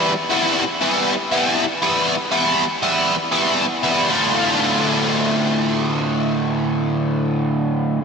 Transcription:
X:1
M:4/4
L:1/8
Q:1/4=119
K:Ddor
V:1 name="Overdriven electric guitar" clef=bass
[E,G,B,E] [E,G,B,E] z [E,G,B,E] z [E,G,B,E] z [E,G,B,E] | z [E,G,B,E] z [E,G,B,E] z [E,G,B,E] z [E,G,B,E] | [D,,A,,D,A,F]8- | [D,,A,,D,A,F]8 |]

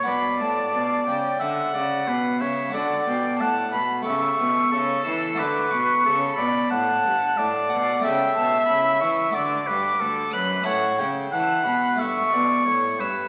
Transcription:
X:1
M:4/4
L:1/8
Q:1/4=90
K:D
V:1 name="Violin"
b a2 g f3 e | f g a b c'3 e' | d' c'2 b a3 f | [K:Amix] g a b c' d'3 f' |
f g a b c'3 e' |]
V:2 name="Oboe"
d4 e d B c | d2 f z e2 A2 | B2 A d f2 d2 | [K:Amix] e4 d B A B |
c z f2 e d c B |]
V:3 name="Harpsichord"
[DFB]8 | [DFA]4 [A,GA]4 | [A,FA]8 | [K:Amix] [A,EA]4 [A,FA]4 |
[CEA]4 [A,EA]4 |]
V:4 name="Harpsichord" clef=bass
B,, A,, B,, C, D, C, B,, C, | D, B,, A,, B,, C, B,, C, E, | D, B,, C, B,, A,, G,, A,, B,, | [K:Amix] C, B,, C, E, D, G,, D,, F,, |
A,, C, E, B,, G,, B,, A,, G,, |]
V:5 name="Cello" clef=bass
B,, A,, B,, C, D, C, B,, C, | D, B,, A,, B,, C, B,, C, E, | D, B,, C, B,, A,, G,, A,, B,, | [K:Amix] C, B,, C, E, D, G,, D,, F,, |
A,, C, E, B,, G,, B,, A,, G,, |]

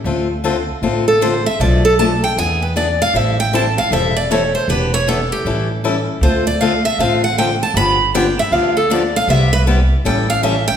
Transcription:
X:1
M:4/4
L:1/16
Q:"Swing" 1/4=156
K:Ddor
V:1 name="Steel-string acoustic guitar"
z8 z2 A2 c2 e2 | d2 A2 a2 g2 ^g2 B2 d2 f2 | e2 g2 a2 f2 e2 d2 _d2 c2 | B2 _d2 A2 G4 z6 |
c2 d2 f2 e2 f2 ^f2 g2 a2 | b4 g2 e2 f2 A2 d2 f2 | e2 B2 z4 g2 f2 e2 g2 |]
V:2 name="Steel-string acoustic guitar"
[D,A,CFA]2 z2 [D,A,CFA] z3 [D,A,CFA]2 z2 [D,A,CFA] z3 | [B,,F,A,DA]2 z2 [B,,F,A,DA] z3 [E,B,D^G]2 z2 [E,B,DG] z3 | [E,G,CEA]2 z2 [E,G,CEA] z3 [E,G,CEA]2 z2 [E,G,CEA] z3 | [E,B,DG]2 z2 [E,B,DG] z3 [E,G,^CEA]2 z2 [E,G,CEA] z3 |
[D,A,CFA]2 z2 [D,A,CFA] z3 [D,A,CFA]2 z2 [D,A,CFA] z3 | [D,F,B,DG]2 z2 [D,F,B,DG] z3 [D,F,B,DG]2 z2 [D,F,B,DG] z3 | [C,G,B,EG]2 z2 [C,G,B,EG] z3 [E,G,^CEA]2 z2 [E,G,CEA] z3 |]
V:3 name="Upright bass" clef=bass
D,,8 A,,,8 | B,,,8 E,,8 | A,,,8 E,,,8 | E,,,8 A,,,8 |
D,,8 A,,,8 | G,,,8 D,,8 | C,,8 A,,,8 |]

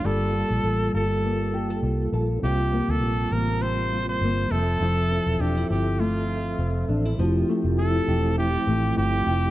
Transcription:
X:1
M:4/4
L:1/16
Q:"Swing 16ths" 1/4=101
K:F
V:1 name="Trumpet"
A6 A6 z4 | G3 A3 B2 c3 c3 A2- | A4 G2 G2 F6 z2 | z4 A4 G4 G4 |]
V:2 name="Nylon-string guitar"
[G,A]2 F2 A2 F2 B,2 G A F2 A2 | [C,F]2 B,2 F2 B,2 G,2 F2 B,2 F,2 | [F,E]2 C2 D E C2 A,4 C2 D E | F,2 A,2 E2 G2 E2 A,2 E2 G2 |]
V:3 name="Tonewheel organ"
[G,B,FA]16 | [G,B,CF]12- [G,B,CF]2 [F,CAe]2- | [F,CAe]16 | [F,A,CE_G=G]16 |]
V:4 name="Fingered electric bass" clef=bass
G,,,3 B,,, A,,,2 G,,,6 C,,2 B,,,2 | C,,3 D,, B,,,2 A,,,6 G,,,2 F,,,2 | F,,,3 E,,, E,,,2 G,,,6 F,,,2 A,,,2 | F,,,2 z F,,,3 E,,,4 A,,,2 G,,,2 F,,,2 |]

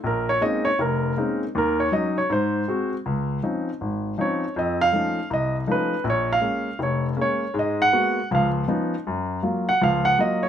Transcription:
X:1
M:4/4
L:1/8
Q:"Swing" 1/4=160
K:Bbm
V:1 name="Grand piano"
B d e d B3 z | B d e d c3 z | [K:Db] z6 d2 | e f3 e z _c2 |
d f3 d z d2 | e g3 f z3 | z3 g f g e d |]
V:2 name="Grand piano"
B,,,2 [A,B,CDE] z F,,,2 [A,B,CDE] z | E,,2 [G,DE] z A,,2 [A,CG] z | [K:Db] D,,2 [F,CDE] z A,,,2 [F,CDE] z | F,,2 [F,=A,DE] z C,,2 [F,A,DE] z |
B,,,2 [A,B,D] z F,,,2 [A,B,D] z | [A,,A,]2 [A,B,_CG] z [D,,F,]2 [F,CDE] z | G,,2 [G,B,F] z [D,,F,]2 [G,B,F] z |]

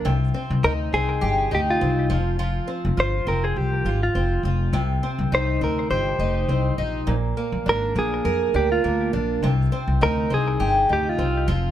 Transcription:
X:1
M:4/4
L:1/16
Q:"Swing 16ths" 1/4=102
K:Cm
V:1 name="Clean electric guitar"
z4 B2 A4 G F3 z2 | z4 c2 B A G3 F3 z2 | z4 c2 B2 c6 z2 | z4 B2 A4 G F3 z2 |
z4 B2 A4 G F3 z2 |]
V:2 name="Twelve-string acoustic guitar"
C,2 C2 E2 C2 G2 E2 C2 F,2 | F,2 C2 F2 C4 F2 C2 F2 | C,2 C2 E2 C2 G2 E2 C2 E2 | B,,2 B,2 D2 B,2 B2 D2 B,2 D2 |
C,2 C2 E2 C2 G2 E2 C2 F,2 |]
V:3 name="Upright bass" clef=bass
C,,2 z C,, D,,2 C,,2 G,,,2 D,,2 C,,2 F,,,2- | F,,,2 z F,,, G,,,2 F,,,2 C,,2 A,,,2 F,,,2 F,,,2 | C,,2 z C,, C,,2 D,,2 G,,,2 F,,,2 C,,2 B,,,2 | B,,,2 z B,,, A,,,2 B,,,2 F,,2 D,,2 D,,2 B,,,2 |
C,,2 z C,, D,,2 C,,2 G,,,2 D,,2 C,,2 F,,,2 |]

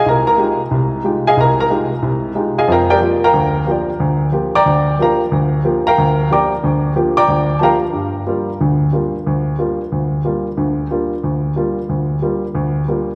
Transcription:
X:1
M:4/4
L:1/8
Q:"Swing" 1/4=182
K:Gphr
V:1 name="Grand piano"
[Bb] [Bb] z4 z [Aefa] | [Bb] [Bb] z4 z [Aefa] | [Bfg=ab] [GBdg] z [Bfgb]3 [GBdg] z | z3 [dgbd']3 [Bfgb] z |
z3 [Bfgb]3 [dgbd'] z | z3 [dgbd']3 [Bfg=ab] z | [K:Gm] z8 | z8 |
z8 | z8 |]
V:2 name="Grand piano"
C,,2 [A,EFG] z C,,2 [A,EFG] z | C,,2 [A,EFG] z C,,2 [A,EFG] z | [F,,F,]2 [F,B,FG] z [D,,D,]2 [F,B,FG] z | D,,2 [F,B,FG] z D,,2 [F,B,FG] z |
D,,2 [F,B,FG] z D,,2 [F,B,FG] z | [D,,D,]2 [F,B,FG] z D,,2 [F,B,FG] z | [K:Gm] G,,2 [G,B,F] z [D,,D,]2 [G,B,F] z | D,,2 [G,B,F] z D,,2 [G,B,F] z |
[D,,D,]2 [G,B,F] z D,,2 [G,B,F] z | D,,2 [G,B,F] z D,,2 [G,B,F] z |]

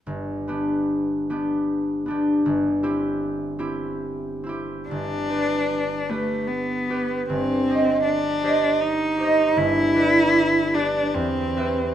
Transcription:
X:1
M:3/4
L:1/8
Q:1/4=75
K:G
V:1 name="Harp"
G,,, [B,DG]2 [B,DG]2 [B,DG] | G,,, [CEG]2 [CEG]2 [CEG] | G,,, [GB]2 [GB]2 [GB] | G,,, [Gc_e]2 [Gce]2 [Gce] |
G,,, [GBd]2 [GBd] E,, [GBe] |]
V:2 name="Cello"
z6 | z6 | D3 A, B,2 | C2 D2 _E2 |
E3 D C2 |]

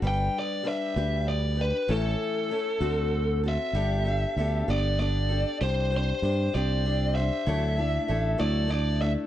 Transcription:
X:1
M:6/8
L:1/8
Q:3/8=65
K:D
V:1 name="Lead electric guitar"
g d e2 d B | A4- A e- | [K:G] e3 d d2 | c c2 d2 e- |
e3 d d e |]
V:2 name="Steel-string acoustic guitar"
[G,DGB]2 [G,DGB] [G,DGB]2 [DGB] | [A,,E,A,CEA]2 [A,CEA] [D,A,=CFA]2 [CFA] | [K:G] [G,B,DGA] [DGA] [B,DGA] [G,B,DGA] [B,DGA] [DGA] | [CDGc] [DGc] [CDGc] [CDGc] [CDGc] [DGc] |
[D,F,A,DEA] [A,DEA] [A,DEA] [D,F,A,DEA] [A,DEA] [A,DEA] |]
V:3 name="Fingered electric bass" clef=bass
G,,, z2 D,,3 | A,,, z2 D,,3 | [K:G] G,,,2 D,, G,,,3 | C,,2 G,, C,,3 |
D,,2 A,,, D,,3 |]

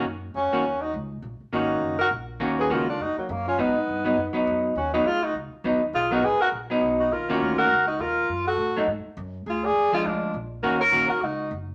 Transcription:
X:1
M:4/4
L:1/8
Q:"Swing" 1/4=204
K:Ebm
V:1 name="Alto saxophone"
z2 G3 G z2 | z2 G3 B z2 | z c B F G B, D F | E6 z2 |
G G A G z4 | A B c B z3 G | B3 B2 G B2 | z =A3 z4 |
A =d2 A F2 z2 | B d2 B G2 z2 |]
V:2 name="Tenor saxophone"
z2 D3 E z2 | z2 E3 G z2 | z A F =D E G, B, _D | C6 z2 |
D E F E z4 | F G A G z3 E | F3 G2 E F2- | F G3 z4 |
F A2 F =D2 z2 | G B2 G E2 z2 |]
V:3 name="Hollow-body jazz guitar"
z3 [E,B,DG] z4 | z2 [E,B,DG]3 z3 | [E,B,DG]2 [E,B,DG] z4 z | [G,CE] z2 [G,CE] z [G,CE]3 |
z [G,CE] z4 [G,CE] z | z [G,CE] z3 [G,CE]3 | z [E,B,DG]3 z4 | z3 [G,=A,E] z4 |
z3 [F,A,=D]3 z2 | [E,B,DG] z [E,B,DG] z4 z |]
V:4 name="Upright bass" clef=bass
G,,2 F,, z E,,2 D,,2 | B,,, z A,,,2 G,,,2 B,,,2 | E,,2 D,,2 F,, z G,,2 | A,,2 =G,,2 _G,, z F,,2 |
E,,2 =D,,2 _D,, z E,,2 | C,,2 A,,, z B,,,2 C,,2 | E,,2 =D,,2 _D,,2 E,,2 | G,,2 =A,,2 _A,, z G,,2 |
=D,,2 z2 D,,2 B,,,2 | E,,2 B,,, z D,,2 G,,,2 |]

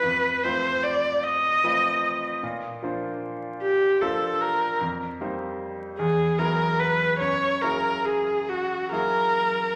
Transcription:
X:1
M:6/8
L:1/8
Q:3/8=50
K:F
V:1 name="Viola"
_c =c d _e3 | z3 G A B | z3 ^G B =B | _d B _A _G B2 |]
V:2 name="Grand piano"
F,, [F,A,C=B]3 [F,A,CB]2 | B,, [F,B,Dc]3 [F,B,Dc]2 | F,, [G,B,_Ec]2 =E,, [^F,=B,=E^G]2 | _G,, [_G,B,_F_A]3 [G,B,FA]2 |]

